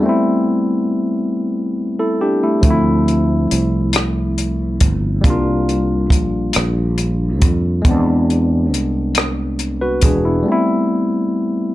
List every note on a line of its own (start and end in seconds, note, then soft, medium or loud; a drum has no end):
0.00 2.58 G3 medium
0.00 1.73 A3 medium
0.00 0.23 B3 soft
0.06 1.74 C4 medium
0.06 1.76 E4 medium
1.99 2.20 E4 soft
1.99 2.19 A4 medium
2.21 2.42 D4 soft
2.21 2.41 G4 medium
2.43 2.63 A3 soft
2.43 2.69 E4 soft
2.61 3.46 D2 medium
2.61 5.19 F3 medium
2.61 5.20 A3 soft
2.61 kick medium
2.61 closed hi-hat medium
2.67 5.22 C4 medium
2.67 5.23 E4 medium
3.08 closed hi-hat soft
3.51 4.77 C2 medium
3.51 closed hi-hat medium
3.93 cross-stick medium
3.93 closed hi-hat medium
4.38 closed hi-hat soft
4.80 5.21 G1 medium
4.80 kick medium
4.80 closed hi-hat medium
5.21 6.11 C2 medium
5.21 7.79 G3 medium
5.21 7.81 A#3 medium
5.21 kick medium
5.21 closed hi-hat soft
5.27 7.82 D4 medium
5.27 7.84 F4 medium
5.69 closed hi-hat soft
6.10 6.51 A#1 medium
6.10 kick medium
6.10 closed hi-hat medium
6.53 7.43 A#1 medium
6.53 cross-stick medium
6.53 closed hi-hat medium
6.98 closed hi-hat soft
7.42 7.82 F2 medium
7.42 kick medium
7.42 closed hi-hat medium
7.82 10.40 G#3 medium
7.82 9.55 B3 medium
7.82 kick loud
7.82 closed hi-hat medium
7.86 8.74 E2 medium
7.86 9.57 C4 medium
7.91 9.58 D4 medium
8.30 closed hi-hat soft
8.74 10.00 C2 medium
8.74 closed hi-hat medium
9.15 cross-stick loud
9.15 closed hi-hat medium
9.59 closed hi-hat soft
9.81 10.02 F#4 soft
9.81 10.02 B4 medium
10.02 10.42 E1 medium
10.02 10.24 D4 soft
10.02 10.24 G#4 medium
10.02 kick medium
10.02 closed hi-hat medium
10.25 10.66 B3 soft
10.25 10.51 E4 medium
10.43 11.75 G3 medium
10.43 11.73 A3 medium
10.48 11.75 C4 medium
10.48 11.75 E4 medium